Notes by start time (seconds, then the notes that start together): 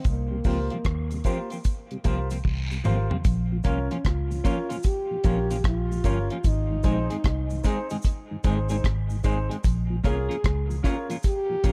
0.04 C2, kick, closed hi-hat, cabasa
0.09 A#3
0.31 C3 G3
0.44 C#2 F3 A#3 C4 F4 G4 A#4 C5, kick, open hi-hat, cabasa
0.70 C3 F3 G3 A#3 C4 F4, closed hi-hat
0.85 D#2, kick, cross-stick, closed hi-hat
1.11 C3 G3, closed hi-hat, cabasa
1.24 F3 A#3 C4 F4 G4 A#4 C5, kick, closed hi-hat, cabasa
1.50 F3 A#3 C4 F4, closed hi-hat, cabasa
1.64 kick, closed hi-hat, cabasa
1.91 C3 G3, closed hi-hat
2.04 C2 F3 A#3 C4 F4 G4 A#4 C5, kick, closed hi-hat, cabasa
2.30 F3 A#3 C4 F4, closed hi-hat, cabasa
2.44 C2, kick, high tom, long guiro
2.71 C3 G3, cabasa
2.84 G#1 F3 A#3 C4 F4 G4 A#4 C5, mid tom, cabasa
3.10 C3 F3 G3 A#3 C4 F4, floor tom
3.24 A#1, kick, closed hi-hat, cabasa
3.52 A#2 F3
3.63 C2 F3 A#3 C#4 F4 A#4 C#5, kick, closed hi-hat, cabasa
3.91 A#2 F3 A#3 C#4 F4, closed hi-hat
4.05 C#2 F4, kick, cross-stick, closed hi-hat
4.31 A#2 F3, cabasa
4.44 F3 A#3 C#4 F4 A#4 C#5, kick, closed hi-hat, cabasa
4.69 A#2 F3 A#3 C#4 F4, closed hi-hat, cabasa
4.83 G4, kick, closed hi-hat, cabasa
5.11 A#2 F3
5.24 A#1 F3 A#3 C#4 F4 A#4 C#5, kick, closed hi-hat, cabasa
5.50 A#2 F3 A#3 C#4 F4, closed hi-hat, cabasa
5.64 A#1 F4, kick, cross-stick, closed hi-hat
5.91 A#2 F3, cabasa
6.04 G1 F3 A#3 C#4 F4 A#4 C#5, kick, closed hi-hat, cabasa
6.30 F3 A#3 C#4 F4, closed hi-hat
6.44 G#1 D#4, kick, closed hi-hat, cabasa
6.70 G#2 D#3
6.83 A#1 G#3 C4 D#4 G#4 C5, kick, closed hi-hat, cabasa
7.10 G#2 D#3 G#3 C4 D#4 G#4, closed hi-hat
7.24 C2, kick, cross-stick, closed hi-hat
7.50 G#2 D#3, cabasa
7.64 G#3 C4 D#4 G#4 C5, kick, closed hi-hat, cabasa
7.90 G#2 D#3 G#3 C4 D#4 G#4, closed hi-hat, cabasa
8.02 kick, closed hi-hat, cabasa
8.31 G#2 D#3
8.44 G#1 G#3 C4 D#4 G#4 C5, kick, closed hi-hat, cabasa
8.69 G#2 D#3 G#3 C4 D#4 G#4 C5, closed hi-hat, cabasa
8.84 G#1, kick, cross-stick, closed hi-hat
9.10 G#2 D#3, cabasa
9.23 G#1 G#3 C4 D#4 G#4 C5, kick, closed hi-hat, cabasa
9.49 G#2 D#3 G#3 C4 D#4 G#4, closed hi-hat
9.64 A#1, kick, closed hi-hat, cabasa
9.90 A#2 F3
10.04 C2 A#3 C#4 F4 G#4 A#4 C#5, kick, closed hi-hat, cabasa
10.29 A#2 F3 A#3 C#4 F4 A#4, closed hi-hat
10.44 C#2, kick, cross-stick, closed hi-hat
10.69 A#2 F3, cabasa
10.83 A#3 C#4 F4 A#4 C#5, kick, cross-stick, closed hi-hat, cabasa
11.09 A#2 F3 A#3 C#4 F4 A#4, closed hi-hat, cabasa
11.23 G4, kick, closed hi-hat, cabasa
11.49 A#2 F3
11.63 A#1 A#3 C#4 F4 A#4 C#5, kick, closed hi-hat, cabasa